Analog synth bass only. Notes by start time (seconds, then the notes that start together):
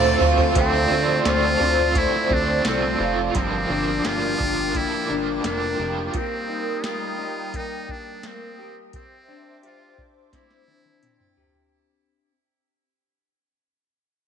Already playing: D2
0.20 D2
0.55 D2
0.90 D2
1.25 D2
1.60 D2
2.30 D2
2.65 C2
3.00 F1
3.35 G1
3.70 G1
4.05 G1
4.40 G1
5.10 G1
5.44 F1
5.79 F1